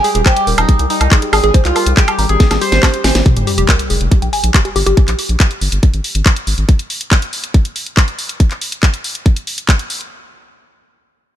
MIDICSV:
0, 0, Header, 1, 7, 480
1, 0, Start_track
1, 0, Tempo, 428571
1, 1728, Time_signature, 4, 2, 24, 8
1, 12723, End_track
2, 0, Start_track
2, 0, Title_t, "Synth arpeggio sound"
2, 0, Program_c, 0, 84
2, 49, Note_on_c, 0, 68, 98
2, 97, Note_off_c, 0, 68, 0
2, 169, Note_on_c, 0, 68, 101
2, 282, Note_off_c, 0, 68, 0
2, 289, Note_on_c, 0, 72, 107
2, 370, Note_off_c, 0, 72, 0
2, 528, Note_on_c, 0, 70, 80
2, 642, Note_off_c, 0, 70, 0
2, 769, Note_on_c, 0, 68, 83
2, 850, Note_off_c, 0, 68, 0
2, 889, Note_on_c, 0, 80, 80
2, 970, Note_off_c, 0, 80, 0
2, 1009, Note_on_c, 0, 82, 103
2, 1123, Note_off_c, 0, 82, 0
2, 1249, Note_on_c, 0, 68, 85
2, 1330, Note_off_c, 0, 68, 0
2, 1369, Note_on_c, 0, 68, 82
2, 1475, Note_off_c, 0, 68, 0
2, 1489, Note_on_c, 0, 68, 109
2, 1538, Note_off_c, 0, 68, 0
2, 1609, Note_on_c, 0, 68, 108
2, 1723, Note_off_c, 0, 68, 0
2, 1729, Note_on_c, 0, 72, 106
2, 1810, Note_off_c, 0, 72, 0
2, 1969, Note_on_c, 0, 70, 76
2, 2083, Note_off_c, 0, 70, 0
2, 2209, Note_on_c, 0, 68, 81
2, 2290, Note_off_c, 0, 68, 0
2, 2328, Note_on_c, 0, 80, 79
2, 2410, Note_off_c, 0, 80, 0
2, 2448, Note_on_c, 0, 82, 107
2, 2562, Note_off_c, 0, 82, 0
2, 2689, Note_on_c, 0, 68, 87
2, 2770, Note_off_c, 0, 68, 0
2, 2809, Note_on_c, 0, 68, 83
2, 2922, Note_off_c, 0, 68, 0
2, 2929, Note_on_c, 0, 67, 100
2, 3042, Note_off_c, 0, 67, 0
2, 3048, Note_on_c, 0, 72, 73
2, 3130, Note_off_c, 0, 72, 0
2, 3169, Note_on_c, 0, 67, 101
2, 3218, Note_off_c, 0, 67, 0
2, 3409, Note_on_c, 0, 80, 80
2, 3523, Note_off_c, 0, 80, 0
2, 3649, Note_on_c, 0, 67, 84
2, 3730, Note_off_c, 0, 67, 0
2, 3769, Note_on_c, 0, 67, 80
2, 3875, Note_off_c, 0, 67, 0
2, 3888, Note_on_c, 0, 67, 103
2, 3937, Note_off_c, 0, 67, 0
2, 4008, Note_on_c, 0, 67, 101
2, 4122, Note_off_c, 0, 67, 0
2, 4129, Note_on_c, 0, 70, 98
2, 4210, Note_off_c, 0, 70, 0
2, 4368, Note_on_c, 0, 68, 79
2, 4482, Note_off_c, 0, 68, 0
2, 4608, Note_on_c, 0, 67, 81
2, 4690, Note_off_c, 0, 67, 0
2, 4728, Note_on_c, 0, 79, 80
2, 4810, Note_off_c, 0, 79, 0
2, 4849, Note_on_c, 0, 80, 96
2, 4963, Note_off_c, 0, 80, 0
2, 5089, Note_on_c, 0, 67, 84
2, 5170, Note_off_c, 0, 67, 0
2, 5209, Note_on_c, 0, 67, 79
2, 5315, Note_off_c, 0, 67, 0
2, 5328, Note_on_c, 0, 67, 106
2, 5377, Note_off_c, 0, 67, 0
2, 5449, Note_on_c, 0, 67, 110
2, 5562, Note_off_c, 0, 67, 0
2, 12723, End_track
3, 0, Start_track
3, 0, Title_t, "Analog synth lead"
3, 0, Program_c, 1, 81
3, 288, Note_on_c, 1, 67, 106
3, 465, Note_off_c, 1, 67, 0
3, 648, Note_on_c, 1, 63, 93
3, 825, Note_off_c, 1, 63, 0
3, 1008, Note_on_c, 1, 63, 97
3, 1243, Note_off_c, 1, 63, 0
3, 1488, Note_on_c, 1, 68, 98
3, 1664, Note_off_c, 1, 68, 0
3, 1848, Note_on_c, 1, 65, 97
3, 2025, Note_off_c, 1, 65, 0
3, 2208, Note_on_c, 1, 67, 102
3, 2385, Note_off_c, 1, 67, 0
3, 2568, Note_on_c, 1, 68, 99
3, 2745, Note_off_c, 1, 68, 0
3, 2928, Note_on_c, 1, 72, 101
3, 3552, Note_off_c, 1, 72, 0
3, 12723, End_track
4, 0, Start_track
4, 0, Title_t, "Synth texture"
4, 0, Program_c, 2, 99
4, 0, Note_on_c, 2, 55, 82
4, 0, Note_on_c, 2, 67, 85
4, 3658, Note_off_c, 2, 55, 0
4, 3658, Note_off_c, 2, 67, 0
4, 12723, End_track
5, 0, Start_track
5, 0, Title_t, "Analog synth bass"
5, 0, Program_c, 3, 38
5, 168, Note_on_c, 3, 27, 80
5, 247, Note_off_c, 3, 27, 0
5, 528, Note_on_c, 3, 27, 91
5, 607, Note_off_c, 3, 27, 0
5, 648, Note_on_c, 3, 27, 84
5, 727, Note_off_c, 3, 27, 0
5, 888, Note_on_c, 3, 36, 83
5, 967, Note_off_c, 3, 36, 0
5, 1128, Note_on_c, 3, 36, 77
5, 1207, Note_off_c, 3, 36, 0
5, 1488, Note_on_c, 3, 32, 95
5, 1567, Note_off_c, 3, 32, 0
5, 1608, Note_on_c, 3, 32, 85
5, 1687, Note_off_c, 3, 32, 0
5, 1848, Note_on_c, 3, 36, 78
5, 1927, Note_off_c, 3, 36, 0
5, 2088, Note_on_c, 3, 36, 78
5, 2167, Note_off_c, 3, 36, 0
5, 2448, Note_on_c, 3, 32, 91
5, 2527, Note_off_c, 3, 32, 0
5, 2568, Note_on_c, 3, 32, 82
5, 2647, Note_off_c, 3, 32, 0
5, 2808, Note_on_c, 3, 32, 77
5, 2887, Note_off_c, 3, 32, 0
5, 3048, Note_on_c, 3, 32, 78
5, 3127, Note_off_c, 3, 32, 0
5, 3409, Note_on_c, 3, 32, 95
5, 3487, Note_off_c, 3, 32, 0
5, 3528, Note_on_c, 3, 32, 84
5, 3607, Note_off_c, 3, 32, 0
5, 3769, Note_on_c, 3, 31, 78
5, 3847, Note_off_c, 3, 31, 0
5, 4009, Note_on_c, 3, 29, 76
5, 4087, Note_off_c, 3, 29, 0
5, 4368, Note_on_c, 3, 29, 87
5, 4447, Note_off_c, 3, 29, 0
5, 4489, Note_on_c, 3, 29, 83
5, 4567, Note_off_c, 3, 29, 0
5, 4729, Note_on_c, 3, 34, 75
5, 4807, Note_off_c, 3, 34, 0
5, 4969, Note_on_c, 3, 34, 77
5, 5047, Note_off_c, 3, 34, 0
5, 5328, Note_on_c, 3, 31, 92
5, 5407, Note_off_c, 3, 31, 0
5, 5448, Note_on_c, 3, 31, 81
5, 5527, Note_off_c, 3, 31, 0
5, 5688, Note_on_c, 3, 34, 82
5, 5767, Note_off_c, 3, 34, 0
5, 5928, Note_on_c, 3, 34, 75
5, 6007, Note_off_c, 3, 34, 0
5, 6288, Note_on_c, 3, 31, 91
5, 6367, Note_off_c, 3, 31, 0
5, 6409, Note_on_c, 3, 31, 82
5, 6487, Note_off_c, 3, 31, 0
5, 6649, Note_on_c, 3, 32, 79
5, 6727, Note_off_c, 3, 32, 0
5, 6888, Note_on_c, 3, 32, 79
5, 6967, Note_off_c, 3, 32, 0
5, 7249, Note_on_c, 3, 32, 95
5, 7327, Note_off_c, 3, 32, 0
5, 7368, Note_on_c, 3, 32, 85
5, 7447, Note_off_c, 3, 32, 0
5, 12723, End_track
6, 0, Start_track
6, 0, Title_t, "Sub drop"
6, 0, Program_c, 4, 103
6, 3649, Note_on_c, 4, 60, 72
6, 5569, Note_off_c, 4, 60, 0
6, 12723, End_track
7, 0, Start_track
7, 0, Title_t, "Drums"
7, 48, Note_on_c, 9, 46, 98
7, 160, Note_off_c, 9, 46, 0
7, 168, Note_on_c, 9, 42, 66
7, 280, Note_off_c, 9, 42, 0
7, 289, Note_on_c, 9, 36, 121
7, 289, Note_on_c, 9, 39, 118
7, 289, Note_on_c, 9, 42, 72
7, 289, Note_on_c, 9, 76, 42
7, 401, Note_off_c, 9, 36, 0
7, 401, Note_off_c, 9, 39, 0
7, 401, Note_off_c, 9, 42, 0
7, 401, Note_off_c, 9, 76, 0
7, 409, Note_on_c, 9, 42, 73
7, 521, Note_off_c, 9, 42, 0
7, 529, Note_on_c, 9, 46, 105
7, 641, Note_off_c, 9, 46, 0
7, 649, Note_on_c, 9, 42, 66
7, 649, Note_on_c, 9, 76, 79
7, 761, Note_off_c, 9, 42, 0
7, 761, Note_off_c, 9, 76, 0
7, 769, Note_on_c, 9, 36, 114
7, 769, Note_on_c, 9, 42, 69
7, 881, Note_off_c, 9, 36, 0
7, 881, Note_off_c, 9, 42, 0
7, 889, Note_on_c, 9, 42, 72
7, 1001, Note_off_c, 9, 42, 0
7, 1009, Note_on_c, 9, 46, 99
7, 1121, Note_off_c, 9, 46, 0
7, 1129, Note_on_c, 9, 42, 71
7, 1129, Note_on_c, 9, 76, 42
7, 1241, Note_off_c, 9, 42, 0
7, 1241, Note_off_c, 9, 76, 0
7, 1248, Note_on_c, 9, 36, 125
7, 1249, Note_on_c, 9, 39, 121
7, 1249, Note_on_c, 9, 42, 72
7, 1360, Note_off_c, 9, 36, 0
7, 1361, Note_off_c, 9, 39, 0
7, 1361, Note_off_c, 9, 42, 0
7, 1369, Note_on_c, 9, 42, 72
7, 1481, Note_off_c, 9, 42, 0
7, 1488, Note_on_c, 9, 46, 108
7, 1488, Note_on_c, 9, 76, 89
7, 1600, Note_off_c, 9, 46, 0
7, 1600, Note_off_c, 9, 76, 0
7, 1609, Note_on_c, 9, 42, 63
7, 1721, Note_off_c, 9, 42, 0
7, 1728, Note_on_c, 9, 36, 112
7, 1728, Note_on_c, 9, 42, 72
7, 1840, Note_off_c, 9, 36, 0
7, 1840, Note_off_c, 9, 42, 0
7, 1848, Note_on_c, 9, 39, 38
7, 1848, Note_on_c, 9, 42, 70
7, 1960, Note_off_c, 9, 39, 0
7, 1960, Note_off_c, 9, 42, 0
7, 1969, Note_on_c, 9, 46, 107
7, 1969, Note_on_c, 9, 76, 41
7, 2081, Note_off_c, 9, 46, 0
7, 2081, Note_off_c, 9, 76, 0
7, 2088, Note_on_c, 9, 42, 72
7, 2200, Note_off_c, 9, 42, 0
7, 2208, Note_on_c, 9, 39, 127
7, 2208, Note_on_c, 9, 42, 70
7, 2209, Note_on_c, 9, 36, 125
7, 2320, Note_off_c, 9, 39, 0
7, 2320, Note_off_c, 9, 42, 0
7, 2321, Note_off_c, 9, 36, 0
7, 2328, Note_on_c, 9, 42, 73
7, 2328, Note_on_c, 9, 76, 84
7, 2440, Note_off_c, 9, 42, 0
7, 2440, Note_off_c, 9, 76, 0
7, 2449, Note_on_c, 9, 46, 104
7, 2561, Note_off_c, 9, 46, 0
7, 2568, Note_on_c, 9, 42, 72
7, 2680, Note_off_c, 9, 42, 0
7, 2688, Note_on_c, 9, 38, 62
7, 2688, Note_on_c, 9, 42, 70
7, 2689, Note_on_c, 9, 36, 121
7, 2800, Note_off_c, 9, 38, 0
7, 2800, Note_off_c, 9, 42, 0
7, 2801, Note_off_c, 9, 36, 0
7, 2809, Note_on_c, 9, 38, 58
7, 2809, Note_on_c, 9, 42, 70
7, 2809, Note_on_c, 9, 76, 38
7, 2921, Note_off_c, 9, 38, 0
7, 2921, Note_off_c, 9, 42, 0
7, 2921, Note_off_c, 9, 76, 0
7, 2928, Note_on_c, 9, 46, 105
7, 3040, Note_off_c, 9, 46, 0
7, 3049, Note_on_c, 9, 38, 72
7, 3049, Note_on_c, 9, 42, 72
7, 3161, Note_off_c, 9, 38, 0
7, 3161, Note_off_c, 9, 42, 0
7, 3169, Note_on_c, 9, 36, 118
7, 3169, Note_on_c, 9, 38, 88
7, 3169, Note_on_c, 9, 39, 122
7, 3169, Note_on_c, 9, 42, 70
7, 3169, Note_on_c, 9, 76, 81
7, 3281, Note_off_c, 9, 36, 0
7, 3281, Note_off_c, 9, 38, 0
7, 3281, Note_off_c, 9, 39, 0
7, 3281, Note_off_c, 9, 42, 0
7, 3281, Note_off_c, 9, 76, 0
7, 3289, Note_on_c, 9, 42, 74
7, 3401, Note_off_c, 9, 42, 0
7, 3409, Note_on_c, 9, 38, 111
7, 3409, Note_on_c, 9, 46, 115
7, 3521, Note_off_c, 9, 38, 0
7, 3521, Note_off_c, 9, 46, 0
7, 3529, Note_on_c, 9, 38, 83
7, 3529, Note_on_c, 9, 42, 65
7, 3641, Note_off_c, 9, 38, 0
7, 3641, Note_off_c, 9, 42, 0
7, 3649, Note_on_c, 9, 36, 113
7, 3649, Note_on_c, 9, 42, 70
7, 3761, Note_off_c, 9, 36, 0
7, 3761, Note_off_c, 9, 42, 0
7, 3769, Note_on_c, 9, 42, 68
7, 3881, Note_off_c, 9, 42, 0
7, 3889, Note_on_c, 9, 46, 106
7, 4001, Note_off_c, 9, 46, 0
7, 4009, Note_on_c, 9, 42, 70
7, 4121, Note_off_c, 9, 42, 0
7, 4129, Note_on_c, 9, 36, 121
7, 4129, Note_on_c, 9, 39, 127
7, 4129, Note_on_c, 9, 42, 70
7, 4241, Note_off_c, 9, 36, 0
7, 4241, Note_off_c, 9, 39, 0
7, 4241, Note_off_c, 9, 42, 0
7, 4249, Note_on_c, 9, 42, 73
7, 4361, Note_off_c, 9, 42, 0
7, 4369, Note_on_c, 9, 46, 110
7, 4481, Note_off_c, 9, 46, 0
7, 4489, Note_on_c, 9, 42, 70
7, 4601, Note_off_c, 9, 42, 0
7, 4609, Note_on_c, 9, 36, 123
7, 4609, Note_on_c, 9, 42, 69
7, 4721, Note_off_c, 9, 36, 0
7, 4721, Note_off_c, 9, 42, 0
7, 4729, Note_on_c, 9, 42, 71
7, 4841, Note_off_c, 9, 42, 0
7, 4849, Note_on_c, 9, 46, 102
7, 4961, Note_off_c, 9, 46, 0
7, 4969, Note_on_c, 9, 42, 71
7, 5081, Note_off_c, 9, 42, 0
7, 5089, Note_on_c, 9, 36, 122
7, 5089, Note_on_c, 9, 39, 127
7, 5089, Note_on_c, 9, 42, 70
7, 5201, Note_off_c, 9, 36, 0
7, 5201, Note_off_c, 9, 39, 0
7, 5201, Note_off_c, 9, 42, 0
7, 5209, Note_on_c, 9, 42, 70
7, 5321, Note_off_c, 9, 42, 0
7, 5329, Note_on_c, 9, 46, 110
7, 5441, Note_off_c, 9, 46, 0
7, 5449, Note_on_c, 9, 42, 67
7, 5561, Note_off_c, 9, 42, 0
7, 5569, Note_on_c, 9, 36, 124
7, 5569, Note_on_c, 9, 42, 67
7, 5681, Note_off_c, 9, 36, 0
7, 5681, Note_off_c, 9, 42, 0
7, 5689, Note_on_c, 9, 39, 39
7, 5689, Note_on_c, 9, 42, 69
7, 5801, Note_off_c, 9, 39, 0
7, 5801, Note_off_c, 9, 42, 0
7, 5809, Note_on_c, 9, 46, 109
7, 5921, Note_off_c, 9, 46, 0
7, 5929, Note_on_c, 9, 42, 67
7, 6041, Note_off_c, 9, 42, 0
7, 6048, Note_on_c, 9, 39, 127
7, 6048, Note_on_c, 9, 42, 68
7, 6049, Note_on_c, 9, 36, 127
7, 6160, Note_off_c, 9, 39, 0
7, 6160, Note_off_c, 9, 42, 0
7, 6161, Note_off_c, 9, 36, 0
7, 6168, Note_on_c, 9, 42, 71
7, 6280, Note_off_c, 9, 42, 0
7, 6288, Note_on_c, 9, 46, 106
7, 6400, Note_off_c, 9, 46, 0
7, 6408, Note_on_c, 9, 42, 68
7, 6520, Note_off_c, 9, 42, 0
7, 6528, Note_on_c, 9, 42, 67
7, 6529, Note_on_c, 9, 36, 124
7, 6640, Note_off_c, 9, 42, 0
7, 6641, Note_off_c, 9, 36, 0
7, 6648, Note_on_c, 9, 42, 65
7, 6760, Note_off_c, 9, 42, 0
7, 6768, Note_on_c, 9, 46, 111
7, 6880, Note_off_c, 9, 46, 0
7, 6888, Note_on_c, 9, 42, 67
7, 7000, Note_off_c, 9, 42, 0
7, 7008, Note_on_c, 9, 39, 127
7, 7008, Note_on_c, 9, 42, 66
7, 7009, Note_on_c, 9, 36, 126
7, 7120, Note_off_c, 9, 39, 0
7, 7120, Note_off_c, 9, 42, 0
7, 7121, Note_off_c, 9, 36, 0
7, 7128, Note_on_c, 9, 42, 69
7, 7240, Note_off_c, 9, 42, 0
7, 7248, Note_on_c, 9, 46, 114
7, 7360, Note_off_c, 9, 46, 0
7, 7368, Note_on_c, 9, 42, 59
7, 7480, Note_off_c, 9, 42, 0
7, 7488, Note_on_c, 9, 42, 64
7, 7489, Note_on_c, 9, 36, 124
7, 7600, Note_off_c, 9, 42, 0
7, 7601, Note_off_c, 9, 36, 0
7, 7608, Note_on_c, 9, 42, 60
7, 7720, Note_off_c, 9, 42, 0
7, 7729, Note_on_c, 9, 46, 110
7, 7841, Note_off_c, 9, 46, 0
7, 7849, Note_on_c, 9, 42, 63
7, 7961, Note_off_c, 9, 42, 0
7, 7969, Note_on_c, 9, 36, 127
7, 7969, Note_on_c, 9, 39, 118
7, 7969, Note_on_c, 9, 42, 66
7, 8081, Note_off_c, 9, 36, 0
7, 8081, Note_off_c, 9, 39, 0
7, 8081, Note_off_c, 9, 42, 0
7, 8089, Note_on_c, 9, 42, 68
7, 8201, Note_off_c, 9, 42, 0
7, 8209, Note_on_c, 9, 46, 112
7, 8321, Note_off_c, 9, 46, 0
7, 8329, Note_on_c, 9, 42, 62
7, 8441, Note_off_c, 9, 42, 0
7, 8449, Note_on_c, 9, 36, 127
7, 8449, Note_on_c, 9, 42, 63
7, 8561, Note_off_c, 9, 36, 0
7, 8561, Note_off_c, 9, 42, 0
7, 8569, Note_on_c, 9, 42, 63
7, 8681, Note_off_c, 9, 42, 0
7, 8689, Note_on_c, 9, 46, 109
7, 8801, Note_off_c, 9, 46, 0
7, 8808, Note_on_c, 9, 42, 65
7, 8920, Note_off_c, 9, 42, 0
7, 8928, Note_on_c, 9, 39, 125
7, 8928, Note_on_c, 9, 42, 64
7, 8929, Note_on_c, 9, 36, 125
7, 9040, Note_off_c, 9, 39, 0
7, 9040, Note_off_c, 9, 42, 0
7, 9041, Note_off_c, 9, 36, 0
7, 9048, Note_on_c, 9, 42, 66
7, 9160, Note_off_c, 9, 42, 0
7, 9168, Note_on_c, 9, 46, 112
7, 9280, Note_off_c, 9, 46, 0
7, 9288, Note_on_c, 9, 42, 59
7, 9400, Note_off_c, 9, 42, 0
7, 9408, Note_on_c, 9, 42, 62
7, 9409, Note_on_c, 9, 36, 121
7, 9520, Note_off_c, 9, 42, 0
7, 9521, Note_off_c, 9, 36, 0
7, 9529, Note_on_c, 9, 39, 35
7, 9529, Note_on_c, 9, 42, 58
7, 9641, Note_off_c, 9, 39, 0
7, 9641, Note_off_c, 9, 42, 0
7, 9648, Note_on_c, 9, 46, 112
7, 9760, Note_off_c, 9, 46, 0
7, 9768, Note_on_c, 9, 42, 61
7, 9880, Note_off_c, 9, 42, 0
7, 9889, Note_on_c, 9, 36, 125
7, 9889, Note_on_c, 9, 39, 117
7, 9889, Note_on_c, 9, 42, 66
7, 10001, Note_off_c, 9, 36, 0
7, 10001, Note_off_c, 9, 39, 0
7, 10001, Note_off_c, 9, 42, 0
7, 10008, Note_on_c, 9, 42, 62
7, 10120, Note_off_c, 9, 42, 0
7, 10128, Note_on_c, 9, 46, 111
7, 10240, Note_off_c, 9, 46, 0
7, 10248, Note_on_c, 9, 42, 61
7, 10360, Note_off_c, 9, 42, 0
7, 10368, Note_on_c, 9, 42, 59
7, 10369, Note_on_c, 9, 36, 118
7, 10480, Note_off_c, 9, 42, 0
7, 10481, Note_off_c, 9, 36, 0
7, 10488, Note_on_c, 9, 42, 60
7, 10600, Note_off_c, 9, 42, 0
7, 10608, Note_on_c, 9, 46, 105
7, 10720, Note_off_c, 9, 46, 0
7, 10728, Note_on_c, 9, 42, 64
7, 10840, Note_off_c, 9, 42, 0
7, 10849, Note_on_c, 9, 36, 122
7, 10849, Note_on_c, 9, 39, 115
7, 10849, Note_on_c, 9, 42, 59
7, 10961, Note_off_c, 9, 36, 0
7, 10961, Note_off_c, 9, 39, 0
7, 10961, Note_off_c, 9, 42, 0
7, 10969, Note_on_c, 9, 42, 61
7, 11081, Note_off_c, 9, 42, 0
7, 11088, Note_on_c, 9, 46, 117
7, 11200, Note_off_c, 9, 46, 0
7, 11208, Note_on_c, 9, 42, 55
7, 11320, Note_off_c, 9, 42, 0
7, 12723, End_track
0, 0, End_of_file